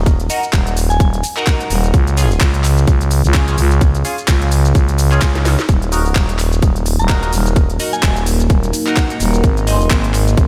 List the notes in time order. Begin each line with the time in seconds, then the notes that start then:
Already playing: D#1
0.06 kick, closed hi-hat, shaker
0.20 closed hi-hat, shaker
0.30 D#4 F#4 A#4, open hi-hat, shaker
0.43 closed hi-hat, shaker
0.53 D#1, kick, clap, closed hi-hat, shaker
0.67 closed hi-hat, shaker
0.77 open hi-hat, shaker
0.90 G#5, closed hi-hat, shaker
1.00 D#1, kick, closed hi-hat, shaker
1.13 closed hi-hat, shaker
1.24 open hi-hat, shaker
1.37 D#4 F#4 A#4, clap, closed hi-hat, shaker
1.47 kick, clap, closed hi-hat, shaker
1.60 closed hi-hat, shaker
1.70 D#1, open hi-hat, shaker
1.84 closed hi-hat, shaker
1.94 C#2, kick, closed hi-hat, shaker
2.07 closed hi-hat, shaker
2.17 C#4 F4 G#4, open hi-hat, shaker
2.31 shaker
2.40 C#2, kick, clap, closed hi-hat, shaker
2.54 closed hi-hat, shaker
2.64 clap, open hi-hat, shaker
2.77 closed hi-hat, shaker
2.87 C#2, kick, closed hi-hat, shaker
3.01 closed hi-hat, shaker
3.11 open hi-hat, shaker
3.24 C#2, closed hi-hat, shaker
3.34 C#4 F4 G#4, kick, clap, closed hi-hat, shaker
3.48 C#4 F4 G#4, closed hi-hat, shaker
3.58 C#2, open hi-hat, shaker
3.71 closed hi-hat, shaker
3.81 kick, closed hi-hat, shaker
3.95 closed hi-hat, shaker
4.05 C#4 F4 G#4, open hi-hat, shaker
4.18 closed hi-hat, shaker
4.28 C#2, kick, clap, closed hi-hat, shaker
4.42 closed hi-hat, shaker
4.52 open hi-hat, shaker
4.65 closed hi-hat, shaker
4.75 C#2, kick, closed hi-hat, shaker
4.88 closed hi-hat, shaker
4.98 open hi-hat, shaker
5.11 C#4 F4 G#4, clap, closed hi-hat, shaker
5.21 C#2, kick, clap, closed hi-hat, shaker
5.35 snare, closed hi-hat, shaker
5.45 snare, open hi-hat, shaker
5.59 snare, shaker
5.69 D#1 F#3 A#3 D#4 A#4, kick, closed hi-hat, shaker
5.82 closed hi-hat, shaker
5.92 D#4 F#4 A#4, open hi-hat, shaker
6.06 shaker
6.15 D#1, kick, clap, closed hi-hat, shaker
6.29 closed hi-hat, shaker
6.39 clap, open hi-hat, shaker
6.52 closed hi-hat, shaker
6.62 D#1, kick, closed hi-hat, shaker
6.76 closed hi-hat, shaker
6.86 open hi-hat, shaker
6.99 D#1 A#5, closed hi-hat, shaker
7.09 D#4 F#4 A#4, kick, clap, closed hi-hat, shaker
7.23 D#4 F#4 A#4, closed hi-hat, shaker
7.33 D#1, open hi-hat, shaker
7.46 closed hi-hat, shaker
7.56 kick, closed hi-hat, shaker
7.70 closed hi-hat, shaker
7.80 D#4 F#4 A#4, open hi-hat, shaker
7.93 G#5, closed hi-hat, shaker
8.03 D#1, kick, clap, closed hi-hat, shaker
8.16 closed hi-hat, shaker
8.26 open hi-hat, shaker
8.40 closed hi-hat, shaker
8.50 D#1, kick, closed hi-hat, shaker
8.63 closed hi-hat, shaker
8.73 open hi-hat, shaker
8.86 D#4 F#4 A#4, clap, shaker
8.96 kick, clap, closed hi-hat, shaker
9.10 closed hi-hat, shaker
9.20 D#1, open hi-hat, shaker
9.34 closed hi-hat, shaker
9.44 G#1 G#3 C4 C5, kick, closed hi-hat, shaker
9.57 closed hi-hat, shaker
9.67 D#4 G#4 C5, open hi-hat, shaker
9.81 shaker
9.90 G#1, kick, clap, closed hi-hat, shaker
10.04 closed hi-hat, shaker
10.14 clap, open hi-hat, shaker
10.28 closed hi-hat, shaker
10.37 G#1, kick, closed hi-hat, shaker